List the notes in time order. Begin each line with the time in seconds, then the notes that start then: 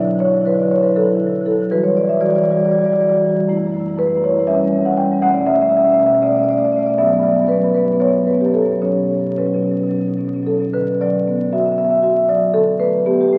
Already playing: D3 D5
0.03 D3 F#3 E4
0.09 F#3 E4
0.15 D3 E4
0.20 F#3 C#5
0.25 D3 F#3 E4
0.33 D3 F#3 E4
0.41 D3 E4
0.46 F#3 E4 B4
0.54 D3 F#3 E4
0.59 D3 D5
0.64 F#3 E4
0.71 D3 F#3 E4 C#5
0.78 D3 F#3 E4
0.83 E4 B4
0.96 D3 F#3 E4 A4
1.03 D3 F#3 E4
1.11 F#3 E4
1.15 D3 F#3
1.21 D3 E4
1.27 F#3 E4
1.32 D3 F#3
1.37 E4
1.41 D3 F#3
1.46 E4 A4
1.51 D3 F#3 E4
1.59 D3 F#3 E4
1.71 E3 G3 F#4 B4
1.83 C#5
1.97 D5
2.09 E5
2.21 E3 G3 F#4 D5
2.28 E3 G3 F#4 D5
2.35 E3 G3 F#4 D5
2.43 G3 F#4 D5
2.48 E3 G3 F#4 D5
2.57 E3 G3 F#4 D5
2.65 E3 G3 F#4 D5
2.71 E3 F#4 D5
2.76 G3 D5
2.81 E3 F#4
2.85 G3 D5
2.90 E3 G3 F#4 D5
2.98 E3 G3 F#4 D5
3.05 E3 G3 F#4 D5
3.13 G3 F#4
3.17 E3
3.21 G3 F#4
3.26 E3 F#4
3.32 E3 G3
3.37 G3 F#4
3.48 F#2 A3 E4
3.57 F#2 A3 E4
3.65 F#2 A3 E4
3.72 A3 E4
3.77 F#2 E4
3.81 A3
3.87 F#2 A3 E4
3.96 F#2 A3 E4 B4
4.03 A3 E4
4.07 F#2 E4
4.16 F#2 A3 E4
4.24 F#2 A3 E4 C#5
4.31 A3 E4
4.36 F#2 A3 E4
4.47 E2 G3 C#4 E5
4.54 E2 G3 C#4
4.64 E2 G3 C#4
4.72 G3 C#4
4.77 E2 C#4
4.83 G3 F#5
4.88 E2 C#4
4.93 G3 C#4
4.97 E2 G5
5.02 G3 C#4
5.08 E2 G3
5.13 C#4
5.22 B2 A3 C#4 F#5
5.30 B2 A3 C#4
5.34 C#4 D5
5.38 B2 A3
5.46 A3 C#4 E5
5.51 B2 C#4 E5
5.55 A3
5.61 B2 A3 C#4 E5
5.68 B2 A3 C#4 E5
5.76 B2 A3 C#4 E5
5.84 A3 C#4 E5
5.90 B2 A3 C#4 E5
5.99 B2 A3 C#4 E5
6.06 B2 A3 C#4 E5
6.14 C#4 E5
6.22 B2 A3 C#4 D5
6.29 B2 A3 C#4 D5
6.36 A3 C#4 D5
6.43 B2 C#4 D5
6.49 A3 D5
6.53 B2 C#4
6.57 A3 D5
6.64 B2 A3 C#4 D5
6.71 B2 C#4 D5
6.77 A3 C#4 D5
6.86 B2 A3 C#4 D5
6.98 G2 F#3 B3 E5
7.06 G2 F#3 B3
7.14 F#3 B3
7.19 G2 B3 D5
7.27 G2 F#3 B3
7.35 F#3 B3
7.41 G2 F#3 B3
7.48 B3 B4
7.52 G2 F#3
7.60 G2 F#3 B3
7.68 F#3 B3
7.74 G2 B3 B4
7.78 F#3
7.85 G2 F#3 B3
7.93 B3
8.00 F#2 F#3 B3 C#5
8.08 F#3 B3
8.12 F#2 B3
8.17 F#3
8.23 F#2 F#3 B3
8.27 B4
8.33 F#2 F#3 B3
8.41 B3 G4
8.45 F#2 F#3 B3
8.54 F#2 F#3 B3 A4
8.62 F#2 F#3 B3
8.72 F#3 B3
8.81 B2 F#3 C#4 C#5
9.37 B2 F#3 C#4 B4
9.46 B2 F#3 C#4
9.54 B2 F#3 C#4
9.62 B2 F#3 C#4
9.71 B2 F#3 C#4
9.79 F#3 C#4
9.83 B2
9.87 F#3 C#4
9.92 B2 C#4
9.98 B2 F#3 C#4
10.08 B2 F#3 C#4
10.17 B2 F#3 C#4
10.25 B2 F#3 C#4
10.34 B2 F#3 C#4
10.42 B2 F#3 C#4
10.47 C#4 A4
10.52 B2 F#3
10.59 B2 F#3 C#4
10.73 D3 B4
11.01 F#3 D5
11.28 B3
11.53 F#4 E5
11.60 E5
11.66 E5
11.72 E5
11.78 B3 E5
11.84 E5
11.90 E5
11.97 E5
12.03 F#4 E5
12.10 E5
12.17 E5
12.29 F#3 D5
12.54 D3 A4
12.79 A3 B4
13.06 B3 G4
13.13 G4
13.21 G4
13.28 G4
13.32 A3 G4